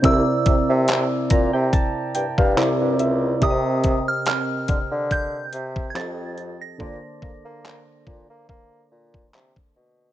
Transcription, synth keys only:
0, 0, Header, 1, 2, 480
1, 0, Start_track
1, 0, Tempo, 845070
1, 22, Time_signature, 4, 2, 24, 8
1, 5751, End_track
2, 0, Start_track
2, 0, Title_t, "Synth keys"
2, 0, Program_c, 0, 88
2, 0, Control_c, 0, 64, 127
2, 12, Note_on_c, 0, 48, 67
2, 17, Note_on_c, 0, 60, 60
2, 22, Note_on_c, 0, 64, 59
2, 27, Note_on_c, 0, 70, 57
2, 30, Control_c, 0, 64, 0
2, 32, Note_on_c, 0, 74, 71
2, 119, Control_c, 0, 64, 127
2, 742, Note_on_c, 0, 82, 68
2, 862, Note_off_c, 0, 82, 0
2, 871, Note_on_c, 0, 79, 67
2, 974, Note_off_c, 0, 79, 0
2, 982, Note_on_c, 0, 81, 65
2, 1205, Note_off_c, 0, 81, 0
2, 1221, Note_on_c, 0, 79, 68
2, 1342, Note_off_c, 0, 79, 0
2, 1351, Note_on_c, 0, 77, 66
2, 1434, Note_off_c, 0, 48, 0
2, 1436, Note_off_c, 0, 60, 0
2, 1439, Note_off_c, 0, 64, 0
2, 1441, Note_off_c, 0, 70, 0
2, 1444, Note_off_c, 0, 74, 0
2, 1454, Note_off_c, 0, 77, 0
2, 1457, Note_on_c, 0, 48, 72
2, 1460, Note_on_c, 0, 60, 69
2, 1462, Note_on_c, 0, 64, 66
2, 1463, Note_on_c, 0, 76, 70
2, 1465, Note_on_c, 0, 70, 66
2, 1468, Note_on_c, 0, 74, 82
2, 1470, Control_c, 0, 64, 0
2, 1575, Control_c, 0, 64, 127
2, 1685, Note_off_c, 0, 76, 0
2, 1703, Note_on_c, 0, 76, 66
2, 1926, Note_off_c, 0, 48, 0
2, 1926, Note_off_c, 0, 76, 0
2, 1931, Note_off_c, 0, 60, 0
2, 1933, Note_on_c, 0, 48, 64
2, 1938, Note_on_c, 0, 60, 61
2, 1941, Note_off_c, 0, 70, 0
2, 1942, Note_off_c, 0, 64, 0
2, 1943, Note_on_c, 0, 67, 62
2, 1945, Note_off_c, 0, 74, 0
2, 1948, Note_on_c, 0, 70, 63
2, 1950, Control_c, 0, 64, 0
2, 1953, Note_on_c, 0, 74, 57
2, 1987, Note_off_c, 0, 74, 0
2, 1990, Note_on_c, 0, 75, 73
2, 2064, Control_c, 0, 64, 127
2, 3354, Note_off_c, 0, 48, 0
2, 3357, Note_off_c, 0, 60, 0
2, 3359, Note_off_c, 0, 67, 0
2, 3362, Note_off_c, 0, 70, 0
2, 3377, Note_on_c, 0, 53, 60
2, 3379, Note_on_c, 0, 60, 56
2, 3380, Note_off_c, 0, 75, 0
2, 3382, Note_on_c, 0, 67, 54
2, 3384, Note_on_c, 0, 69, 52
2, 3387, Note_on_c, 0, 75, 65
2, 3389, Control_c, 0, 64, 0
2, 3480, Control_c, 0, 64, 127
2, 3851, Note_on_c, 0, 50, 61
2, 3854, Note_off_c, 0, 69, 0
2, 3856, Note_on_c, 0, 58, 61
2, 3859, Note_off_c, 0, 53, 0
2, 3860, Note_off_c, 0, 60, 0
2, 3861, Note_off_c, 0, 67, 0
2, 3861, Note_on_c, 0, 69, 59
2, 3864, Note_off_c, 0, 75, 0
2, 3866, Note_on_c, 0, 72, 57
2, 3868, Control_c, 0, 64, 0
2, 3871, Note_on_c, 0, 74, 66
2, 3955, Control_c, 0, 64, 127
2, 5751, Note_off_c, 0, 50, 0
2, 5751, Note_off_c, 0, 58, 0
2, 5751, Note_off_c, 0, 69, 0
2, 5751, Note_off_c, 0, 72, 0
2, 5751, Note_off_c, 0, 74, 0
2, 5751, End_track
0, 0, End_of_file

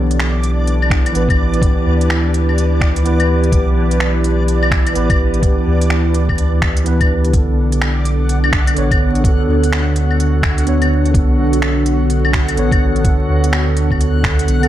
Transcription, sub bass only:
0, 0, Header, 1, 2, 480
1, 0, Start_track
1, 0, Key_signature, 2, "minor"
1, 0, Tempo, 476190
1, 1636, Time_signature, 4, 2, 24, 8
1, 14798, End_track
2, 0, Start_track
2, 0, Title_t, "Sub bass"
2, 0, Program_c, 0, 38
2, 0, Note_on_c, 0, 35, 98
2, 1142, Note_off_c, 0, 35, 0
2, 1155, Note_on_c, 0, 33, 86
2, 1765, Note_off_c, 0, 33, 0
2, 1876, Note_on_c, 0, 38, 85
2, 3544, Note_off_c, 0, 38, 0
2, 3550, Note_on_c, 0, 35, 94
2, 4981, Note_off_c, 0, 35, 0
2, 4993, Note_on_c, 0, 33, 86
2, 5604, Note_off_c, 0, 33, 0
2, 5713, Note_on_c, 0, 38, 86
2, 7383, Note_off_c, 0, 38, 0
2, 7391, Note_on_c, 0, 35, 98
2, 8822, Note_off_c, 0, 35, 0
2, 8837, Note_on_c, 0, 33, 83
2, 9446, Note_off_c, 0, 33, 0
2, 9555, Note_on_c, 0, 38, 89
2, 11224, Note_off_c, 0, 38, 0
2, 11233, Note_on_c, 0, 35, 97
2, 12663, Note_off_c, 0, 35, 0
2, 12673, Note_on_c, 0, 33, 86
2, 13284, Note_off_c, 0, 33, 0
2, 13388, Note_on_c, 0, 38, 86
2, 14586, Note_off_c, 0, 38, 0
2, 14592, Note_on_c, 0, 35, 97
2, 14798, Note_off_c, 0, 35, 0
2, 14798, End_track
0, 0, End_of_file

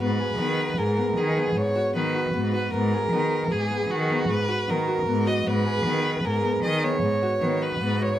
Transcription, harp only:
0, 0, Header, 1, 2, 480
1, 0, Start_track
1, 0, Time_signature, 7, 2, 24, 8
1, 0, Key_signature, 5, "minor"
1, 0, Tempo, 390625
1, 10064, End_track
2, 0, Start_track
2, 0, Title_t, "Harp"
2, 0, Program_c, 0, 46
2, 0, Note_on_c, 0, 59, 71
2, 0, Note_on_c, 0, 66, 54
2, 0, Note_on_c, 0, 68, 59
2, 233, Note_off_c, 0, 68, 0
2, 238, Note_on_c, 0, 68, 57
2, 473, Note_off_c, 0, 59, 0
2, 478, Note_on_c, 0, 59, 59
2, 951, Note_off_c, 0, 68, 0
2, 956, Note_on_c, 0, 68, 61
2, 1185, Note_off_c, 0, 59, 0
2, 1189, Note_on_c, 0, 59, 57
2, 1430, Note_off_c, 0, 68, 0
2, 1435, Note_on_c, 0, 68, 64
2, 1671, Note_off_c, 0, 59, 0
2, 1676, Note_on_c, 0, 59, 64
2, 2151, Note_off_c, 0, 66, 0
2, 2156, Note_on_c, 0, 66, 59
2, 2393, Note_off_c, 0, 59, 0
2, 2398, Note_on_c, 0, 59, 63
2, 2627, Note_off_c, 0, 66, 0
2, 2632, Note_on_c, 0, 66, 56
2, 2863, Note_off_c, 0, 59, 0
2, 2868, Note_on_c, 0, 59, 67
2, 3106, Note_off_c, 0, 66, 0
2, 3111, Note_on_c, 0, 66, 57
2, 3356, Note_off_c, 0, 59, 0
2, 3361, Note_on_c, 0, 59, 70
2, 3593, Note_off_c, 0, 68, 0
2, 3598, Note_on_c, 0, 68, 58
2, 3834, Note_off_c, 0, 59, 0
2, 3839, Note_on_c, 0, 59, 60
2, 4306, Note_off_c, 0, 68, 0
2, 4311, Note_on_c, 0, 68, 64
2, 4549, Note_off_c, 0, 59, 0
2, 4554, Note_on_c, 0, 59, 57
2, 4786, Note_off_c, 0, 68, 0
2, 4791, Note_on_c, 0, 68, 64
2, 5031, Note_off_c, 0, 59, 0
2, 5036, Note_on_c, 0, 59, 65
2, 5503, Note_off_c, 0, 66, 0
2, 5508, Note_on_c, 0, 66, 61
2, 5746, Note_off_c, 0, 59, 0
2, 5751, Note_on_c, 0, 59, 71
2, 5984, Note_off_c, 0, 66, 0
2, 5989, Note_on_c, 0, 66, 57
2, 6224, Note_off_c, 0, 59, 0
2, 6229, Note_on_c, 0, 59, 65
2, 6466, Note_off_c, 0, 66, 0
2, 6470, Note_on_c, 0, 66, 59
2, 6706, Note_off_c, 0, 59, 0
2, 6710, Note_on_c, 0, 59, 77
2, 6949, Note_off_c, 0, 68, 0
2, 6954, Note_on_c, 0, 68, 57
2, 7191, Note_off_c, 0, 59, 0
2, 7196, Note_on_c, 0, 59, 60
2, 7668, Note_off_c, 0, 68, 0
2, 7673, Note_on_c, 0, 68, 63
2, 7914, Note_off_c, 0, 59, 0
2, 7919, Note_on_c, 0, 59, 59
2, 8151, Note_off_c, 0, 68, 0
2, 8156, Note_on_c, 0, 68, 65
2, 8394, Note_off_c, 0, 59, 0
2, 8399, Note_on_c, 0, 59, 61
2, 8873, Note_off_c, 0, 66, 0
2, 8878, Note_on_c, 0, 66, 59
2, 9105, Note_off_c, 0, 59, 0
2, 9110, Note_on_c, 0, 59, 62
2, 9354, Note_off_c, 0, 66, 0
2, 9359, Note_on_c, 0, 66, 61
2, 9592, Note_off_c, 0, 59, 0
2, 9597, Note_on_c, 0, 59, 65
2, 9835, Note_off_c, 0, 66, 0
2, 9840, Note_on_c, 0, 66, 57
2, 10064, Note_off_c, 0, 59, 0
2, 10064, Note_off_c, 0, 66, 0
2, 10064, Note_off_c, 0, 68, 0
2, 10064, End_track
0, 0, End_of_file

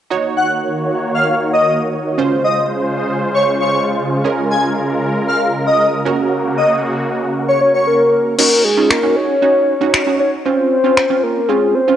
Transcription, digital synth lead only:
0, 0, Header, 1, 2, 480
1, 0, Start_track
1, 0, Tempo, 517241
1, 102, Time_signature, 4, 2, 24, 8
1, 11104, End_track
2, 0, Start_track
2, 0, Title_t, "Digital synth lead"
2, 0, Program_c, 0, 84
2, 341, Note_on_c, 0, 78, 79
2, 430, Note_off_c, 0, 78, 0
2, 1063, Note_on_c, 0, 77, 78
2, 1152, Note_off_c, 0, 77, 0
2, 1423, Note_on_c, 0, 75, 75
2, 1601, Note_off_c, 0, 75, 0
2, 2266, Note_on_c, 0, 75, 79
2, 2354, Note_off_c, 0, 75, 0
2, 3104, Note_on_c, 0, 73, 76
2, 3192, Note_off_c, 0, 73, 0
2, 3343, Note_on_c, 0, 73, 67
2, 3521, Note_off_c, 0, 73, 0
2, 4182, Note_on_c, 0, 80, 77
2, 4271, Note_off_c, 0, 80, 0
2, 4902, Note_on_c, 0, 77, 82
2, 4991, Note_off_c, 0, 77, 0
2, 5261, Note_on_c, 0, 75, 74
2, 5440, Note_off_c, 0, 75, 0
2, 6102, Note_on_c, 0, 75, 84
2, 6191, Note_off_c, 0, 75, 0
2, 6944, Note_on_c, 0, 73, 81
2, 7032, Note_off_c, 0, 73, 0
2, 7181, Note_on_c, 0, 73, 68
2, 7360, Note_off_c, 0, 73, 0
2, 11104, End_track
0, 0, End_of_file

